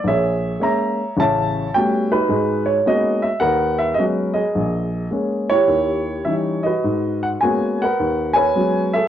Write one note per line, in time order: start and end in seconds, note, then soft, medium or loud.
0.04 0.53 A#1 medium
0.04 1.16 G#4 medium
0.04 0.60 C#5 medium
0.04 0.61 E5 medium
0.60 1.00 G#3 soft
0.60 1.01 A#3 soft
0.60 1.01 C#4 soft
0.60 1.14 C#5 medium
0.60 1.15 E5 medium
0.60 1.20 A#5 medium
1.17 1.66 A1 medium
1.17 1.67 C#3 medium
1.17 2.27 C#5 medium
1.17 2.28 E5 medium
1.17 1.77 A5 medium
1.74 2.14 G3 soft
1.74 2.14 A3 soft
1.74 2.14 B3 soft
1.74 2.14 C#4 soft
1.74 2.10 F#4 soft
1.74 2.13 G5 medium
2.11 3.20 D#4 medium
2.11 2.86 F#4 medium
2.11 2.70 B4 medium
2.29 2.78 G#2 medium
2.29 2.78 G#3 medium
2.66 2.86 C#5 medium
2.86 3.26 G#3 soft
2.86 3.26 A#3 soft
2.86 3.26 B3 soft
2.86 3.26 C#4 soft
2.86 3.27 F#4 medium
2.86 3.26 D#5 medium
3.22 3.42 E5 medium
3.40 3.91 D#2 medium
3.40 3.91 D#3 medium
3.40 4.50 A#4 medium
3.40 4.51 B4 medium
3.40 3.81 F#5 medium
3.78 3.98 E5 medium
3.94 4.39 F#3 soft
3.94 4.39 G#3 soft
3.94 4.03 D#5 medium
3.99 4.39 B3 soft
3.99 4.39 C#4 soft
3.99 4.39 F#4 soft
4.34 5.46 G#4 medium
4.34 5.07 D#5 medium
4.55 5.05 A#1 medium
5.11 5.52 G#3 soft
5.11 5.52 A#3 soft
5.11 5.53 C#4 soft
5.50 6.63 E4 medium
5.50 6.64 G4 medium
5.50 6.62 C#5 medium
5.67 6.19 D#2 medium
6.25 6.68 E3 soft
6.25 6.68 G3 soft
6.25 6.68 C#4 soft
6.25 6.68 D#4 soft
6.25 6.34 E5 medium
6.63 7.42 F#4 soft
6.63 7.77 B4 soft
6.63 7.18 D#5 medium
6.84 7.34 G#2 medium
7.23 7.28 F#5 medium
7.41 7.83 G#3 soft
7.41 7.83 A#3 soft
7.41 7.83 B3 soft
7.41 7.83 C#4 soft
7.41 7.83 F#4 medium
7.41 7.81 G#5 medium
7.82 8.92 A#4 medium
7.82 8.35 B4 medium
7.82 8.34 F#5 medium
7.99 8.49 D#2 medium
8.34 9.08 B4 medium
8.34 9.08 C#5 medium
8.34 8.94 G#5 medium
8.55 8.96 F#3 soft
8.55 8.96 G#3 soft
8.55 8.96 B3 soft
8.55 8.96 C#4 soft
8.55 8.96 F#4 soft
8.93 9.08 G#4 medium
8.93 9.08 A4 medium
8.93 9.08 E5 medium